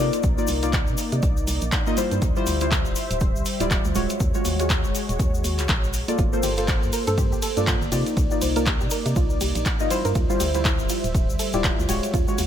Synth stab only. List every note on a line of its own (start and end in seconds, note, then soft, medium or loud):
0.00 0.34 A#3 medium
0.00 0.34 D#4 medium
0.00 0.35 F4 medium
0.00 0.35 D5 medium
0.38 0.59 A#3 medium
0.38 0.59 D#4 medium
0.38 0.59 F4 medium
0.38 0.60 D5 medium
0.63 0.72 A#3 medium
0.63 0.72 D#4 medium
0.63 0.72 F4 medium
0.63 0.72 D5 medium
1.87 1.95 A#3 loud
1.87 1.95 D#4 medium
1.87 1.96 F4 medium
1.87 1.96 D#5 loud
1.97 2.33 G3 loud
1.97 2.33 E4 medium
1.97 2.33 F4 medium
1.97 2.33 C5 loud
2.36 2.58 G3 loud
2.36 2.58 E4 medium
2.36 2.58 F4 medium
2.36 2.58 C5 loud
2.61 3.57 G3 medium
2.61 3.57 E4 medium
2.61 3.57 F4 medium
2.61 3.57 C5 medium
3.60 3.93 G3 medium
3.60 3.93 E4 medium
3.60 3.93 F4 medium
3.60 3.93 D5 loud
3.95 4.31 G#3 medium
3.95 4.31 F4 medium
3.95 4.31 F#4 medium
3.95 4.31 C#5 medium
4.34 4.56 G#3 medium
4.34 4.56 F4 medium
4.34 4.56 F#4 medium
4.34 4.56 C#5 medium
4.59 4.68 G#3 medium
4.59 4.69 F4 medium
4.59 4.69 F#4 medium
4.59 4.69 C#5 medium
6.08 6.29 A#3 medium
6.08 6.29 F4 medium
6.08 6.30 A4 medium
6.08 6.30 D5 medium
6.33 6.54 A#3 loud
6.33 6.54 F4 medium
6.33 6.54 A4 medium
6.33 6.54 C5 loud
6.57 7.53 A#3 medium
6.57 7.53 F4 medium
6.57 7.54 A4 medium
6.57 7.54 C5 medium
7.57 7.89 A#3 medium
7.57 7.90 F4 medium
7.57 7.90 A4 medium
7.57 7.90 D5 loud
7.92 8.28 A#3 medium
7.92 8.28 D#4 medium
7.92 8.28 F4 medium
7.92 8.28 D5 medium
8.31 8.53 A#3 medium
8.31 8.53 D#4 medium
8.31 8.53 F4 medium
8.31 8.53 D5 medium
8.56 8.65 A#3 medium
8.56 8.65 D#4 medium
8.56 8.65 F4 medium
8.56 8.66 D5 medium
9.80 9.89 A#3 medium
9.80 9.89 D#4 medium
9.80 9.89 F4 medium
9.80 9.89 D#5 loud
9.90 10.26 G3 medium
9.90 10.26 E4 medium
9.90 10.26 F4 medium
9.90 10.26 C5 loud
10.29 10.51 G3 loud
10.29 10.51 E4 medium
10.29 10.51 F4 medium
10.29 10.51 C5 loud
10.54 11.50 G3 medium
10.54 11.50 E4 medium
10.54 11.50 F4 medium
10.54 11.51 C5 medium
11.53 11.86 G3 medium
11.53 11.86 E4 medium
11.53 11.86 F4 medium
11.53 11.87 D5 loud
11.89 12.24 G#3 medium
11.89 12.25 F4 medium
11.89 12.25 F#4 medium
11.89 12.25 C#5 medium
12.28 12.47 G#3 medium
12.28 12.47 F4 medium
12.28 12.47 F#4 medium
12.28 12.47 C#5 medium